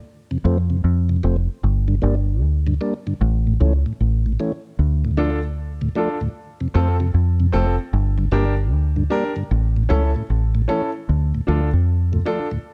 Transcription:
0.31 0.38 F2 medium
0.31 0.38 C3 medium
0.45 0.81 F2 loud
0.45 0.58 F3 medium
0.45 0.58 A3 medium
0.45 0.58 C4 medium
0.70 0.77 F2 medium
0.70 0.77 C3 medium
0.84 1.20 F2 medium
1.09 1.16 F2 medium
1.09 1.16 C3 medium
1.23 1.47 F1 medium
1.23 1.36 F3 medium
1.23 1.36 A3 medium
1.23 1.37 C4 medium
1.64 1.99 G1 medium
1.88 1.95 G2 medium
1.88 1.95 D3 medium
2.02 2.42 G1 loud
2.02 2.15 G3 medium
2.02 2.15 A#3 medium
2.02 2.15 D4 medium
2.42 2.78 D2 medium
2.67 2.74 G2 medium
2.67 2.74 D3 medium
2.81 2.94 G3 medium
2.81 2.94 A#3 medium
2.81 2.94 D4 medium
3.07 3.14 G2 medium
3.07 3.14 D3 medium
3.21 3.57 A1 loud
3.47 3.54 A2 medium
3.61 3.83 C#2 loud
3.61 3.73 E3 medium
3.61 3.73 A3 medium
3.61 3.73 C#4 medium
3.86 3.93 A2 medium
4.00 4.36 A1 medium
4.26 4.32 A2 medium
4.40 4.52 E3 medium
4.40 4.52 A3 medium
4.40 4.52 C#4 medium
4.79 5.93 D2 medium
5.05 5.11 D2 medium
5.05 5.11 A2 medium
5.17 5.30 F3 medium
5.17 5.30 A3 medium
5.17 5.37 D4 medium
5.17 5.31 D4 medium
5.17 5.37 F4 medium
5.17 5.38 A4 loud
5.81 5.89 D2 medium
5.81 5.89 A2 medium
5.95 6.09 F3 medium
5.95 6.09 A3 medium
5.95 6.16 D4 medium
5.95 6.09 D4 medium
5.95 6.16 F4 medium
5.95 6.17 A4 medium
6.21 6.28 D2 medium
6.21 6.29 A2 medium
6.61 6.68 F2 medium
6.61 6.68 C3 medium
6.74 7.11 F2 loud
6.74 6.88 F3 medium
6.74 6.88 A3 medium
6.74 6.94 C4 medium
6.74 6.88 C4 medium
6.74 6.95 F4 medium
6.74 6.95 A4 loud
7.00 7.07 F2 medium
7.00 7.07 C3 medium
7.00 7.06 F4 soft
7.00 7.06 A4 soft
7.14 7.50 F2 medium
7.40 7.47 F2 medium
7.40 7.47 C3 medium
7.52 7.77 F1 medium
7.52 7.66 F3 medium
7.52 7.66 A3 medium
7.52 7.73 C4 medium
7.52 7.67 C4 medium
7.52 7.73 F4 medium
7.52 7.73 A4 loud
7.93 8.29 G1 loud
8.18 8.26 G2 medium
8.18 8.25 D3 medium
8.32 8.72 G1 loud
8.32 8.45 G3 medium
8.32 8.45 A#3 medium
8.32 8.52 D4 loud
8.32 8.45 D4 medium
8.32 8.52 G4 medium
8.32 8.52 A#4 loud
8.72 9.08 D2 medium
8.96 9.04 G2 medium
8.96 9.04 D3 medium
9.10 9.24 G3 medium
9.10 9.24 A#3 medium
9.10 9.30 D4 medium
9.10 9.24 D4 medium
9.10 9.31 G4 medium
9.10 9.31 A#4 loud
9.36 9.44 G2 medium
9.36 9.43 D3 medium
9.51 9.87 A1 loud
9.77 9.83 A2 medium
9.89 10.13 C#2 medium
9.89 10.03 E3 medium
9.89 10.03 A3 medium
9.89 10.09 C#4 medium
9.89 10.03 C#4 medium
9.89 10.09 E4 medium
9.89 10.10 A4 loud
10.15 10.23 A2 medium
10.15 10.21 E4 soft
10.15 10.21 A4 soft
10.30 10.66 A1 medium
10.55 10.62 A2 medium
10.68 10.82 E3 medium
10.68 10.82 A3 medium
10.68 10.88 C#4 medium
10.68 10.82 C#4 medium
10.68 10.88 E4 medium
10.68 10.89 A4 loud
11.09 11.32 D2 medium
11.34 11.41 D2 medium
11.34 11.41 A2 medium
11.47 11.71 D2 medium
11.47 11.61 F3 medium
11.47 11.61 A3 medium
11.47 11.67 D4 medium
11.47 11.61 D4 medium
11.47 11.67 F4 medium
11.47 11.67 A4 medium
11.73 12.22 F2 medium
12.12 12.20 D2 medium
12.12 12.20 A2 medium
12.12 12.18 F4 soft
12.12 12.18 A4 soft
12.25 12.39 F3 medium
12.25 12.39 A3 medium
12.25 12.46 D4 medium
12.25 12.39 D4 medium
12.25 12.46 F4 medium
12.25 12.46 A4 loud
12.51 12.59 D2 medium
12.51 12.59 A2 medium

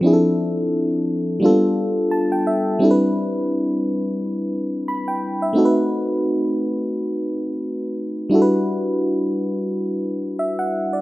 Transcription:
0.01 1.37 F3 medium
0.01 1.38 C4 medium
0.01 1.39 D4 medium
0.06 1.40 E4 medium
0.06 0.13 G#4 medium
0.13 1.44 A4 medium
1.40 2.76 G3 medium
1.40 1.49 A#3 soft
1.40 2.77 D4 medium
1.44 2.80 B3 medium
1.44 2.78 F4 medium
1.44 2.79 A4 medium
2.11 2.30 A5 medium
2.32 2.45 G5 medium
2.47 2.78 E5 medium
2.79 5.17 G3 medium
2.79 5.17 C4 medium
2.79 5.18 D4 medium
2.79 5.19 E4 medium
2.85 2.90 A4 medium
2.91 5.22 B4 medium
4.88 5.06 B5 medium
5.08 5.40 G5 medium
5.42 5.74 E5 medium
5.53 8.26 A3 medium
5.53 8.27 C4 medium
5.53 8.27 D#4 medium
5.53 8.28 F#4 medium
5.58 5.64 A4 medium
5.65 8.32 B4 medium
8.30 11.01 G3 medium
8.30 11.01 D4 medium
8.30 11.01 E4 medium
8.34 11.01 F#4 medium
8.34 8.41 A4 medium
8.42 11.01 B4 medium
10.39 10.58 E5 medium
10.59 10.91 F#5 medium
10.93 11.01 D5 medium

